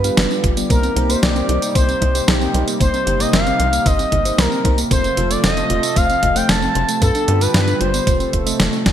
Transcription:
Already playing: G2 D3 G3 B3 F4 G4 B4
0.04 G3 B3 D4 F4 F5, closed hi-hat, tambourine
0.17 G1 B3, snare, closed hi-hat, tambourine
0.31 G3 D4 F4 B4, tambourine
0.44 G1 F4, kick, closed hi-hat
0.56 G3 B3 D4 F4 D5, closed hi-hat, tambourine
0.70 C2 C3 A#3 D#4 G4 A#4 C5, kick, closed hi-hat, tambourine
0.83 C4, closed hi-hat, tambourine
0.96 C2 A#3 D#4 G4 C5, closed hi-hat
1.09 A#3 D#4 G4 A#4 C5, closed hi-hat, tambourine
1.22 C2 A#3 D#4 G4 C5 D5, snare, closed hi-hat, tambourine
1.35 C4, closed hi-hat, tambourine
1.49 C2 A#3 D#4 G4 C5, closed hi-hat
1.62 A#3, closed hi-hat, tambourine
1.75 C2 A#3 D#4 G4 C5, kick, closed hi-hat, tambourine
1.88 C4, closed hi-hat, tambourine
2.02 C2 A#3 D#4 G4 D#5, kick, closed hi-hat
2.15 A#3 D#4 G4 C5, closed hi-hat, tambourine
2.28 C2 A#3 D#4 G4 C5, snare, closed hi-hat, tambourine
2.41 C4, tambourine
2.54 C2 A#3 D#4 G4 C5, closed hi-hat
2.67 A#3, closed hi-hat, tambourine
2.80 G1 A#3 D#4 G4 C5, kick, closed hi-hat, tambourine
2.94 C4, closed hi-hat, tambourine
3.07 G1 A#3 D#4 G4 C5, closed hi-hat
3.20 A#3 D#4 G4 A#4 D#5, closed hi-hat, tambourine
3.33 G1 A#3 D#4 G4 C5 F5, snare, closed hi-hat, tambourine
3.46 C4, closed hi-hat, tambourine
3.60 C2 A#3 D#4 G4 C5, closed hi-hat
3.73 A#3, closed hi-hat, tambourine
3.86 G1 A#3 D#4 G4 C5 D#5, kick, closed hi-hat, tambourine
3.99 C4, closed hi-hat, tambourine
4.12 G1 A#3 D#4 G4 D#5, kick, closed hi-hat
4.25 A#3 D#4 G4 C5, closed hi-hat, tambourine
4.38 C2 A#3 D#4 G4 A#4 C5, snare, closed hi-hat, tambourine
4.51 C4, tambourine
4.65 C2 A#3 D#4 G4 C5, kick, closed hi-hat
4.78 A#3, closed hi-hat, tambourine
4.91 F1 F3 A3 C4 F4 A4 C5, kick, closed hi-hat, tambourine
5.04 C4, closed hi-hat, tambourine
5.17 F1 A3 C4 F4 C5, closed hi-hat
5.30 A3 C4 F4 A4 D5, closed hi-hat, tambourine
5.43 F1 A3 C4 F4 C5 D#5, snare, closed hi-hat, tambourine
5.57 C4, closed hi-hat, tambourine
5.70 F1 A3 C4 F4 C5, closed hi-hat
5.83 A3, closed hi-hat, tambourine
5.96 F1 A3 C4 F4 C5 F5, kick, closed hi-hat, tambourine
6.10 C4, closed hi-hat, tambourine
6.23 F1 A3 C4 F4 D#5, kick, closed hi-hat
6.36 A3 C4 F4 C5 G5, closed hi-hat, tambourine
6.49 F1 A3 C4 F4 C5 A5, snare, closed hi-hat, tambourine
6.62 C4, tambourine
6.75 F1 A3 C4 F4 C5, closed hi-hat
6.88 A3, closed hi-hat, tambourine
7.02 G2 D3 G3 B3 D4 F4 G4 A4 B4, kick, closed hi-hat, tambourine
7.15 D4, closed hi-hat, tambourine
7.28 G2 G3 D4 F4 B4, closed hi-hat
7.41 G3 B3 D4 F4 A4 B4, closed hi-hat, tambourine
7.54 G2 G3 B3 D4 F4 B4, snare, closed hi-hat, tambourine
7.67 D4, closed hi-hat, tambourine
7.80 G1 G3 D4 F4 B4 C5, closed hi-hat
7.94 B3, closed hi-hat, tambourine
8.07 F1 C3 F3 A3 C4 F4 A4 C5, kick, closed hi-hat, tambourine
8.20 C4, closed hi-hat, tambourine
8.33 F1 F4, kick, closed hi-hat
8.46 A3 C4 F4 D#5, closed hi-hat, tambourine
8.59 F1 A3, snare, closed hi-hat, tambourine
8.73 A3 C4 F4 C5, tambourine
8.86 F1 F4, kick, snare, closed hi-hat

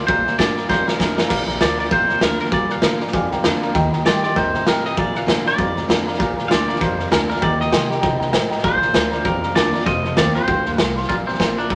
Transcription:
0.07 A#1 A#2 C5 D5 F5 A#5, kick, snare
0.26 A#2 D5 F5 A#5, snare
0.38 G2 D3 A#3 D4 F4 D5 F5 A5, kick, snare, hi-hat pedal
0.57 F4 D5 F5 A#5, snare
0.68 F2 G2 C5 D5 F5 A#5, kick, snare
0.85 A#4 D5 A#5, snare
0.98 F2 D3 A#3 D4 F4 D5 A#5, kick, snare, hi-hat pedal
1.16 D4 F4 D5 F5 A#5, snare
1.27 A#1 A#2 D5 F5 A#5, kick, snare, crash
1.46 A#1 D5 F5 A#5, snare
1.59 D2 D3 A#3 D4 F4 D5 A#5, snare, hi-hat pedal
1.77 D4 F4 D5 F5 A#5, snare
1.85 snare
1.90 A#1 F2 C5 D5 F5 A#5, kick, snare
2.08 F2 D5 F5 A#5, snare
2.20 D#2 D3 A#3 D4 F4 A#4 D5, snare, hi-hat pedal
2.39 A#4 D5 F5 A#5, snare
2.45 snare
2.51 G2 A#2 D5 F5 A#5, kick, snare
2.69 D5 F5 A#5, snare
2.82 G#2 D3 A#3 D4 F4 D5 F5 A#5, snare, hi-hat pedal
3.00 D4 F4 D5 F5 A#5, snare
3.07 snare
3.13 F2 G2 D5 F5 G#5, kick, snare
3.31 G#2 D5 F5 G5 A#5, snare
3.44 F2 D3 A#3 D4 F4 D5 A#5, snare, hi-hat pedal
3.62 D5 F5 A#5, snare
3.74 D#2 D#3 D#5 G5 A#5, kick, snare
3.92 D#2 D#5 G5 A#5, snare
4.05 G2 G3 A#3 D#4 G4 D5 D#5 C6, snare, hi-hat pedal
4.24 D#4 G4 D5 D#5 G5 C6, snare
4.36 D#2 G2 C5 D#5 G5 A#5, kick, snare
4.53 A#2 D#5 G5 A#5, snare
4.66 G#2 C3 A#4 D#5 G5 A#5, snare, hi-hat pedal
4.84 D#5 G5 A#5, snare
4.97 A#1 A#2 D5 F5 A#5, kick, snare
5.14 D5 F5 A#5, snare
5.26 G#2 D3 A#3 D4 F4 D5 F5, snare, hi-hat pedal
5.45 D4 F4 D5 F5 A#5, snare
5.58 F2 G2 D5 F5 A#5, kick, snare
5.76 G#2 D5 F5 A#5, snare
5.88 F2 D3 A#3 D4 F4 D5 F5 A#5, snare, hi-hat pedal
6.06 D4 F4 D5 F5 A#5, snare
6.14 D5 F5 A#5, snare
6.20 A#1 A#2, kick, snare
6.36 A#1 D5 F5 A#5, snare
6.48 D2 D3 A#3 D4 F4 D5 F5 C6, snare, hi-hat pedal
6.67 D5 F5 A#5, snare
6.75 D5, snare
6.80 A#1 F2 C5 F5 A#5, kick, snare
6.97 F2 D5 F5 A#5, snare
7.11 D2 D3 A#3 D4 F4 A#4 D5 A#5, snare, hi-hat pedal
7.29 D4 F4 A#4 D5 F5 G#5, snare
7.36 snare
7.41 D#2 D#3 D5 D#5 G5 A#5, kick, snare
7.59 D#5 G5 A#5, snare
7.71 C3 G3 A#3 D#4 G4 D#5 G5 C6, snare, hi-hat pedal
7.90 D#4 G4 D#5 G5 A#5, snare
8.02 C3 D3 D#5 G5 A#5, kick, snare
8.19 C3 D#5 G5 A#5, snare
8.31 A1 G#2 D#5 G5 A#5, snare, hi-hat pedal
8.50 D#5 G5 A#5, snare
8.58 snare
8.63 A#1 A#2 C5 D5 F5 A#5, kick, snare
8.81 A#1 D5 F5 A#5, snare
8.93 D2 D3 A#3 D4 F4 D5 F5 A#5, snare, hi-hat pedal
9.10 D4 F4 D5 F5 A#5, snare
9.24 A#1 F2 A#4 D5 F5 A#5, kick, snare
9.42 F2 D5 F5 A#5, snare
9.55 D#2 D3 A#3 D4 F4 D5, snare, hi-hat pedal
9.72 D4 F4 D5 F5 A#5, snare
9.80 snare
9.85 F1 F2 C5 D#5 F5 A5, kick, snare
10.04 C5 F5 A5, snare
10.16 D#2 D#3 A3 C4 F4 C5 D5 F5 A5, snare, hi-hat pedal
10.35 C4 F4 C5 F5 A5, snare
10.48 D2 G2 C5 F5 G5, kick, snare
10.66 D#2 C5 F5 A5, snare
10.78 C2 A2 A#4 C5 F5 A5, snare, hi-hat pedal
10.96 C5 F5 C6, snare
11.03 snare
11.09 A#1 A#2 F4 D5 F5 A#5, kick, snare
11.27 C4 D5 A#5, snare
11.34 snare
11.39 A#1 D3 A#3 D4 F4 D5 F5 A#5, kick, snare, hi-hat pedal
11.57 D4 F4 D5 F5 A#5, snare
11.70 F2 A2 D5 F5 A#5, kick, snare

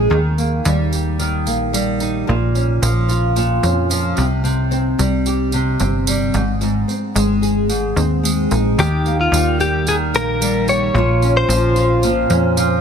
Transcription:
Already playing: G#2 G#3 C4 G#4
0.10 D#2 D#3
0.38 A#3, tambourine
0.65 D#2 G3, tambourine
0.92 G4, tambourine
1.19 D#3, tambourine
1.47 A#1 A#3, tambourine
1.73 G3, tambourine
2.00 D#4, tambourine
2.27 A#1 A#2
2.55 C#4, tambourine
2.82 A#1 F3, tambourine
3.09 F4, tambourine
3.36 A#2, tambourine
3.63 F2 C#4, tambourine
3.90 F3, tambourine
4.16 C2 C3, tambourine
4.44 C3, tambourine
4.71 C4, tambourine
4.99 C2 G3, tambourine
5.26 G4, tambourine
5.52 C3, tambourine
5.80 G1 C4, tambourine
6.07 G3, tambourine
6.34 G#1 G#2, tambourine
6.61 G#2, tambourine
6.88 C4, tambourine
7.15 G#1 G#3, tambourine
7.42 G#4, tambourine
7.69 G#2, tambourine
7.96 D#2 C4, tambourine
8.23 G#3, tambourine
8.51 A#1 D#4, tambourine
8.78 D#2 D#3 G4, tambourine
9.06 A#3, tambourine
9.21 F4
9.32 D#2 G3, tambourine
9.60 G4, tambourine
9.87 D#3 G#4, tambourine
10.14 A#1 A#3 A#4, tambourine
10.41 G3, tambourine
10.68 G4 C#5, tambourine
10.94 A#1 A#2 F4
11.22 C#4, tambourine
11.37 C5
11.49 A#1 F3, tambourine
11.76 F4, tambourine
12.03 A#2, tambourine
12.30 F2 C#4, tambourine
12.57 F3, tambourine

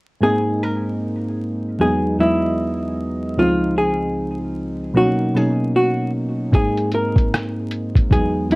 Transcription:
0.21 G#2 G#3 A#3 C4 D#4 G#4
0.63 A#4
1.79 E2 F#3 G#3 B3 D#4 G#4
2.18 E2 F#3 G#3 B3 E4 D#5
3.37 C#2 F3 G#3 C4 D#4 F4
3.78 G#4
4.94 B2 F#3 A#3 C#4 D#4 F#4
5.34 B2 F#3 A#3 C#4 D#4 G#4
5.76 F#4
6.51 G#2 G#3 A#3 C4 D#4 G#4, kick, closed hi-hat
6.77 closed hi-hat
6.92 A#4, closed hi-hat
7.16 kick, closed hi-hat
7.34 cross-stick, closed hi-hat
7.71 closed hi-hat
7.96 kick, closed hi-hat
8.10 E2 F#3 G#3 B3 D#4 G#4, kick, closed hi-hat
8.50 E2 F#3 G#3 B3 E4, closed hi-hat

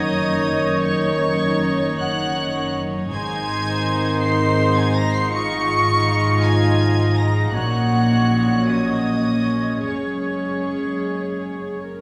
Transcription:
Already playing: F#1 F#2 D#3 C#4 D#4 C#5 D#5 D#6
0.81 C#5 C#6
1.99 F#5 F#6
3.11 G#1 G#2 D#3 C4 D#4 C5 G#5 G#6
4.22 C6 C7
4.77 G#5 G#6
4.95 A#5 A#6
5.14 C6 C7
5.32 F3 D#4 F4 D#5 C#6 C#7
6.42 G#5 G#6
7.16 A#5 A#6
7.51 A#1 A#2 F#3 C#4 F#4 C#5 F#5 F#6
8.68 C#4 D#5 D#6
9.86 F#1 F#2 G#3 G#4 C#5 C#6
11.87 A#4

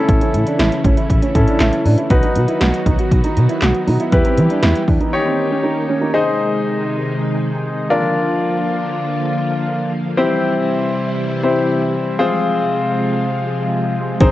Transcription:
Already playing: C#3 E3 A3 C#4 E4 A4
0.09 A1, kick, closed hi-hat
0.21 C#4, closed hi-hat
0.34 A2, closed hi-hat
0.47 D4, closed hi-hat
0.59 A1 E4, snare, closed hi-hat
0.72 closed hi-hat
0.84 A1 C#4, kick, closed hi-hat
0.97 E4, closed hi-hat
1.10 A1, kick, closed hi-hat
1.22 C#4, closed hi-hat
1.35 A2 C#4 E4 A4, kick, closed hi-hat
1.47 D4, closed hi-hat
1.60 A1 E4, snare, clap, closed hi-hat
1.73 closed hi-hat
1.85 A2 D4, open hi-hat
1.98 E4, closed hi-hat
2.10 B1 D#3 F#3 B3 D#4 F#4 B4, kick, closed hi-hat
2.23 D#4, closed hi-hat
2.36 B2, closed hi-hat
2.48 E4, closed hi-hat
2.61 B1 F#4, snare, closed hi-hat
2.74 closed hi-hat
2.86 B1 D#4, kick, closed hi-hat
2.99 F#4, closed hi-hat
3.11 B1, kick, closed hi-hat
3.24 D#4, closed hi-hat
3.37 B2, closed hi-hat
3.49 E4, closed hi-hat
3.62 B1 F#4, snare, clap, closed hi-hat
3.74 closed hi-hat
3.87 B2 D#4, open hi-hat
4.00 E4, closed hi-hat
4.12 E2 E3 G3 E4 G4 B4, kick, closed hi-hat
4.25 C4, closed hi-hat
4.37 E3, closed hi-hat
4.50 D4, closed hi-hat
4.63 E2 E4, snare, closed hi-hat
4.75 closed hi-hat
4.88 E2 D4, kick, open hi-hat
5.01 D#4, closed hi-hat
5.13 D#3 A#3 C#4 D#4 G4 C#5
5.26 C4
5.51 C#4
5.64 D#4
5.89 C#4
6.01 D#4
6.14 C3 D#3 G#3 D#4 G#4 C5 D#5
7.90 D3 F3 A#3 D4 F4 A#4 D5
10.17 C3 E3 G3 C4 E4 G4 C5
11.43 C4 E4 G4 C5
12.19 F3 G#3 C4 F4 G#4 C5
14.20 G#1 D#3 C4 D#4 G#4 C5, kick, closed hi-hat

